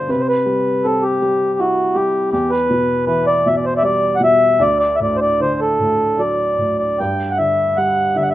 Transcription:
Already playing: B2 D3 D4 C5
0.09 C3 B4
0.20 C5
0.28 B4
0.46 G3
0.84 C4 A4
1.03 G4
1.22 G3
1.59 E4 F#4
1.94 G3 G4
2.31 E2 G4
2.50 B4
2.70 B2
3.06 E3 B4
3.26 D5
3.46 B2 E5
3.57 D5
3.66 C5
3.76 D5 E5
3.83 G3 D5
4.16 F#5
4.20 B2
4.24 E5
4.59 D2 D5
4.80 D5
4.95 E5
5.00 A2 D5
5.16 C5
5.21 D5
5.40 D3 C5
5.61 A4
5.80 A2
6.18 F#3 D5
6.58 A2
6.79 D5
6.99 G2 G5
7.31 F#5
7.38 D3 E5
7.77 G3 F#5
8.16 D3 E5
8.23 F#5
8.30 E5

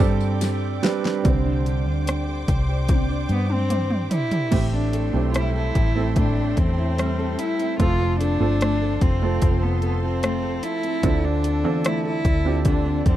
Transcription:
Already playing: C4 D4 G4 D5 G5 D6
0.00 G2 G3 C4 D4 G4 A4 C5, tambourine
0.20 tambourine
0.41 G4, snare, ride, tambourine
0.83 G3 C4 D4 G4 B4 C5, snare, ride, tambourine
1.05 snare
1.24 C2 D3 G3 C4 C5 D5 G5 D6, kick, closed hi-hat
1.46 D4
1.66 G4, closed hi-hat
1.87 D2 D4
2.07 C5, cross-stick, closed hi-hat
2.28 G4
2.48 C2 C5, kick, cross-stick, closed hi-hat
2.69 G4
2.89 C4, kick, closed hi-hat, high tom
3.09 D4
3.29 G2 B3 G4, closed hi-hat
3.50 C4 D4, mid tom
3.70 C5, closed hi-hat, mid tom
3.90 G4, mid tom
4.11 E4 C5, closed hi-hat, floor tom
4.31 G4, closed hi-hat, floor tom
4.51 A1 A2 A3 C4 E4 G4 A4 E5 G5 C6, kick, closed hi-hat, crash
4.73 C4 D4
4.93 A4, closed hi-hat
5.13 B1 A3 C4 E4 G4
5.31 G3 F4, closed hi-hat
5.36 E4, cross-stick
5.56 E4 A4
5.75 A1 E4, kick, cross-stick, closed hi-hat
5.95 A3 C4 E4 A4
6.16 A2 D4, kick, closed hi-hat
6.37 C4
6.57 E2 C4 A4, kick, closed hi-hat
6.78 E4
6.98 G3, cross-stick, closed hi-hat
7.19 A4
7.39 E4, closed hi-hat
7.59 C4, closed hi-hat
7.79 F1 F3 A3 C4 F4 A4 C5 A5 C6, kick, closed hi-hat
8.00 C4
8.20 D4 A4, closed hi-hat
8.40 G1 A3 C4 F4 A4
8.61 A3, cross-stick, closed hi-hat
8.82 A4
9.01 F1 C4 F4, kick, closed hi-hat
9.22 A3 C4 F4 A4
9.42 F1 F3, kick, closed hi-hat
9.62 B3 C4
9.82 B3 A4, closed hi-hat
10.03 C4 F4
10.23 A3, cross-stick, closed hi-hat
10.43 A4
10.63 E4, closed hi-hat
10.83 C4, closed hi-hat
11.03 D2 D3 C4 D4 F4 A4 D5, kick, closed hi-hat
11.24 C4 D4
11.44 A4, closed hi-hat
11.64 E2 C4 D4 F4 A4
11.84 A3 E4, cross-stick, closed hi-hat
12.05 E4 A4
12.25 D2, kick, cross-stick, closed hi-hat
12.45 C4 D4 F4 G4
12.65 D3 D4, kick, closed hi-hat
12.86 C4
13.06 F2 C4 A4, kick, closed hi-hat

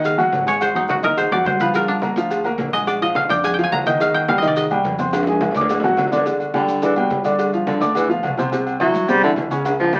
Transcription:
Already playing: D#2 D#3 D#4 D#5 F#5 G#5 A#5
0.04 F5, cowbell, high conga, low agogo, maracas
0.18 F#3 F#4 F#5, high conga, low agogo, maracas
0.32 G#1, cowbell, high conga, low timbale, maracas
0.46 G#3 G#4 C#5 G#5, cowbell, high conga, low agogo, maracas
0.61 C5, cowbell, high conga, low agogo, maracas
0.74 F#3 D#4 F#4 F#5, high conga, maracas
0.89 F#4, cowbell, high conga, low timbale, low agogo, maracas
1.03 D#2 D#4 A#4 D#5 D#6, high conga, maracas
1.17 C5, cowbell, high conga, low conga, low agogo, maracas
1.31 F2 F#3 F#4 D5 F#5, high conga, low conga, maracas
1.45 G2 C5, cowbell, high conga, low timbale, low agogo, maracas
1.59 F3 F4 B4 F5, high conga, low agogo, maracas
1.74 F3 F4 A#4 F5, cowbell, high conga, low agogo, maracas
1.88 D4, high conga, low agogo, maracas
2.02 A#3 A#4 A#5, cowbell, high conga, low timbale, low agogo, maracas
2.16 D2 F3 F4 F5, high conga, maracas
2.30 cowbell, high conga, low agogo, maracas
2.44 A#3 A#4 A#5, high conga, low agogo, maracas
2.58 A#1, cowbell, high conga, low timbale, maracas
2.73 G#3 G#4 D#5 G#5, cowbell, low agogo, maracas
2.87 D5, cowbell, high conga, low agogo, maracas
3.01 F3 F4 D#5 F5, high conga, maracas
3.15 F5, cowbell, high conga, low timbale, low agogo, maracas
3.29 F2 D4 D5 G5 D6, high conga, maracas
3.44 G#5, cowbell, high conga, low conga, low agogo, maracas
3.54 G5, high conga
3.58 F3 F4 F5, maracas
3.64 G#5
3.72 D#2 A#5, cowbell, high conga, low timbale, low agogo, maracas
3.86 D#3 D#4 D#5 G5, high conga, low agogo, maracas
4.00 D#3 D#4 D#5 F5, cowbell, low agogo, maracas
4.14 G5, high conga, low agogo, maracas
4.28 G3 G4 F5 G5, cowbell, high conga, low timbale, low agogo, maracas
4.38 D#3 D#5
4.42 C2 D#4 D#5, high conga, maracas
4.48 D5
4.56 D#5, cowbell, high conga, low agogo, maracas
4.70 G3 G4 G5, high conga, low agogo, maracas
4.84 F2, cowbell, high conga, low timbale, maracas
4.98 C4 C5 C6, cowbell, high conga, low agogo, maracas
5.13 cowbell, high bongo, high timbale, low agogo, maracas
5.23 high conga, high timbale, maracas
5.27 G#3 G#4 G#5, high bongo
5.32 high timbale
5.41 cowbell, high bongo, high conga, high timbale, low agogo, maracas
5.51 D2, high conga, low timbale
5.55 D4 D5 D6, high bongo, maracas
5.61 low timbale
5.69 cowbell, high conga, low conga, low timbale, low agogo, maracas
5.80 A1 F#3, low bongo, low timbale, maracas
5.84 F#4 F#5
5.97 G1, cowbell, low bongo, high conga, low timbale, low agogo, maracas
6.08 low timbale
6.12 D3 D4 D5, low bongo, high conga, low agogo, maracas
6.17 low timbale
6.26 D3 D4 D5, cowbell, low agogo, maracas
6.40 high conga, low agogo, maracas
6.54 D3 G3 G4 G5, cowbell, high conga, low timbale, low agogo, maracas
6.68 G2, high conga, maracas
6.82 D3 E3 D4 D5, cowbell, high conga, low agogo, maracas
6.96 B2 G3 G4 G5, high conga, low agogo, maracas
7.10 G2, cowbell, high conga, low timbale, maracas
7.24 D3 D4 D5, cowbell, low agogo, maracas
7.39 cowbell, low agogo, maracas
7.53 F3 F4 F5, high conga, maracas
7.67 D3, cowbell, high conga, low timbale, low agogo, maracas
7.81 D2 D4 D5 D6, high conga, maracas
7.95 E3, cowbell, high conga, low conga, low agogo, maracas
8.09 B2 F3 F4 F5, high conga, low conga, maracas
8.23 C2, cowbell, high conga, low timbale, low agogo, maracas
8.37 C3 C4 C5, high conga, low agogo, maracas
8.52 C3 C4 C5, cowbell, low agogo, maracas
8.67 low agogo, maracas
8.80 E3 F#3 E4 E5, cowbell, high conga, low timbale, low agogo, maracas
8.94 G2, high conga, maracas
9.08 C3 G3 C4 C5, cowbell, high conga, low agogo, maracas
9.22 D3 E3 E4 E5, high conga, low agogo, maracas
9.36 C#2, cowbell, high conga, low timbale, maracas
9.50 C#3 C#4 C#5, cowbell, high conga, low agogo, maracas
9.65 cowbell, high conga, high timbale, low agogo, maracas
9.79 F3 F4 F5, maracas
9.84 high timbale
9.93 G3, cowbell, high conga, low timbale, low agogo, maracas

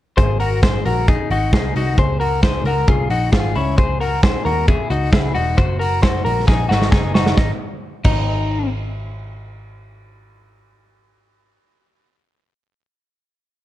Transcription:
0.17 G#1 G#4 C5, kick, closed hi-hat
0.40 F#4 A#4, open hi-hat
0.63 G#4 C5, kick, snare, closed hi-hat
0.85 A#1 F#4 A#4, open hi-hat
1.08 D#4 G#4, kick, closed hi-hat
1.30 G#1 D#4 F#4, open hi-hat
1.53 C2 D#4 G#4, kick, snare, closed hi-hat
1.76 C2 D#4 F#4, open hi-hat
1.98 C#2 G#4 C5, kick, closed hi-hat
2.20 F#4 A#4, open hi-hat
2.43 G#4 C5, kick, snare, closed hi-hat
2.64 C#2 F#4 A#4, open hi-hat
2.88 C2 F4 G#4, kick, closed hi-hat
3.10 A#1 D#4 F#4, open hi-hat
3.32 G#1 F4 G#4, kick, snare, closed hi-hat
3.55 C#2 C#4 E4, open hi-hat
3.78 G#4 C5, kick, closed hi-hat
4.00 F#4 A#4, open hi-hat
4.23 G#4 C5, kick, snare, closed hi-hat
4.45 D#2 F#4 A#4, open hi-hat
4.68 E4 G#4, kick, closed hi-hat
4.90 C#2 D#4 F#4, open hi-hat
5.12 C#2 E4 G#4, kick, snare, closed hi-hat
5.34 E1 D#4 F#4, open hi-hat
5.57 F#1 F#4 C5, kick, closed hi-hat
5.79 F#4 A#4, open hi-hat
6.02 F#4 C5, kick, snare, closed hi-hat
6.25 A#1 F#4 A#4, open hi-hat
6.47 A#1 D#4 G#4, kick, snare
6.69 G#1 D#4 F#4, snare
6.82 snare
6.91 F#1 D#4 G#4, kick, snare
7.14 F#1 D#4 F#4, snare
7.26 snare
7.37 G#1 D#4, kick, snare
8.04 G#1 D#4, kick, crash

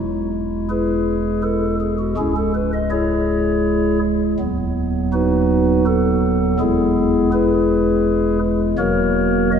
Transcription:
Already playing: E1 E2 G#3 E4
0.70 E4 G#4 B4
1.43 A4
1.81 G#4
1.99 F#4
2.17 C#1 C#2 G#3 C#4 E4 G#4
2.37 A4
2.55 B4
2.74 D#5
2.91 E4 G#4 C#5
4.39 D#1 D#2 F#3 B3
5.13 D#4 F#4 B4
5.86 A4
6.59 E1 E2 G#3 B3 E4 G#4
7.33 E4 G#4 B4
8.78 E1 E2 F#3 A#3 F#4 A#4 C#5
9.52 D#5

